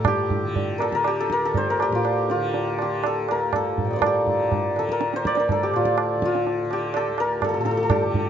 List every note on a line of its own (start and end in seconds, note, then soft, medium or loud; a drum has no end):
0.00 1.38 D2 medium
0.00 1.87 A2 medium
0.00 0.42 D3 medium
0.00 1.12 D#4 medium
0.00 1.95 F4 medium
0.00 0.81 A4 medium
0.05 1.07 G4 loud
0.05 tabla na loud
0.05 tabla ge medium
0.30 tabla ge medium
0.42 0.90 D3 medium
0.56 tabla tin medium
0.56 tabla ge medium
0.78 1.01 A4 loud
0.78 0.88 A#4 medium
0.78 tabla na medium
0.90 2.36 D3 medium
0.90 tabla ke medium
0.95 1.26 A#4 loud
1.04 1.82 G4 loud
1.04 tabla na medium
1.20 1.38 A4 loud
1.30 1.51 A#4 loud
1.30 tabla ke medium
1.38 3.30 D2 medium
1.45 1.76 A4 loud
1.54 3.96 C5 loud
1.54 tabla tin medium
1.54 tabla ge medium
1.70 3.12 A#4 loud
1.80 2.81 G4 loud
1.80 tabla na medium
1.87 3.78 A2 medium
1.93 2.30 F4 medium
1.93 tabla ke medium
2.05 tabla na medium
2.30 5.65 F4 medium
2.30 tabla te medium
2.36 2.82 D3 medium
2.54 tabla tin medium
2.79 4.29 D3 medium
2.79 4.06 G4 medium
2.79 tabla na medium
3.04 3.37 A4 medium
3.04 tabla na medium
3.29 5.23 D2 medium
3.29 3.62 A#4 medium
3.29 tabla na medium
3.53 4.02 A4 medium
3.53 tabla na medium
3.53 tabla ge medium
3.78 5.70 A2 medium
3.78 tabla ge medium
3.85 6.08 F5 soft
3.85 5.92 G5 soft
3.91 5.26 D5 medium
3.91 5.33 D#5 soft
3.96 4.85 A#4 medium
3.96 5.16 C5 medium
4.02 4.79 A4 medium
4.02 tabla na loud
4.02 tabla ge loud
4.06 5.63 G4 medium
4.27 4.75 D3 medium
4.27 tabla ge medium
4.52 tabla tin medium
4.52 tabla ge medium
4.75 6.17 D3 medium
4.75 tabla na medium
4.79 4.98 A4 medium
4.89 5.39 A#4 loud
4.89 tabla ke medium
5.01 tabla te medium
5.14 5.35 C5 loud
5.14 tabla te medium
5.23 7.09 D2 medium
5.23 7.73 D5 loud
5.23 tabla ke medium
5.35 7.97 C5 medium
5.35 tabla te medium
5.40 5.58 A#4 medium
5.49 6.96 A4 medium
5.49 tabla tin medium
5.49 tabla ge medium
5.63 6.72 G4 loud
5.70 7.57 A2 medium
5.70 tabla na medium
5.76 6.25 F4 medium
5.85 tabla ke medium
5.98 tabla na medium
6.17 6.64 D3 medium
6.22 8.30 F4 medium
6.22 tabla ke medium
6.35 tabla te medium
6.47 tabla tin medium
6.64 8.03 D3 medium
6.71 7.91 G4 medium
6.71 tabla na medium
6.94 7.26 A4 loud
6.94 tabla na medium
7.09 8.30 D2 medium
7.18 7.50 A#4 loud
7.18 tabla na medium
7.42 7.48 A4 medium
7.42 tabla na medium
7.42 tabla ge medium
7.49 7.53 A4 medium
7.54 8.30 A2 medium
7.54 7.60 A4 medium
7.61 7.65 A4 medium
7.65 7.71 A4 medium
7.65 tabla te medium
7.71 7.77 A4 medium
7.77 7.82 A4 medium
7.83 8.30 A4 medium
7.90 8.30 G4 medium
7.90 tabla na loud
7.90 tabla ge loud
8.03 8.30 D3 medium
8.14 tabla ge medium